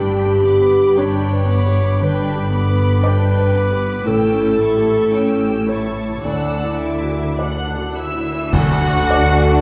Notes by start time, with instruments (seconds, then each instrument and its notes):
Already playing: double bass section G1, felt piano G2, cello section G2, viola section D4, clarinet G4, violin section G5 B5
0.26 felt piano G4
0.43 viola section B3, violin section B5 D6
0.62 felt piano B4
0.96 felt piano D4, viola section D4, clarinet C#5, violin section G5 B5
1.32 felt piano B4
1.48 viola section B3, violin section B5 D6
1.66 felt piano G4
2.00 felt piano D3, viola section D4, clarinet B4, violin section G5 B5
2.35 felt piano G4
2.52 viola section B3, violin section B5 D6
2.69 felt piano B4
3.03 viola section D4, clarinet B4, felt piano D5, violin section G5 B5
3.38 felt piano B4
3.54 viola section B3, violin section B5 D6
3.71 felt piano G4
4.05 double bass section A1, cello section A2, felt piano A2, viola section C#4, clarinet A4, violin section G5 E6
4.40 felt piano E4
4.60 viola section E4, violin section A5 C#6
4.77 felt piano G4
5.13 viola section C#4, felt piano C#5, violin section G5 E6
5.50 felt piano G4
5.69 viola section E4, clarinet C#5, violin section A5 C#6
5.87 felt piano E4
6.24 felt piano D2, double bass section D2, cello section D3, viola section D4, clarinet D5, violin section F#5 E6
6.64 felt piano E4
6.83 viola section E4, violin section E5 D6
7.02 felt piano F#4
7.39 viola section D4, felt piano D5, violin section F#5 F#6
7.77 felt piano F#4
7.97 viola section E4, violin section E5 E6
8.15 felt piano E4
8.52 felt piano D2, double bass section D2, cello section D3, french horn section A3 D4, viola section D4 F#4, violin section F#4 F#5, oboe F#4, flute section F#5, concert bass drum, crash
8.82 felt piano F#4
9.10 felt piano D5
9.39 felt piano F#4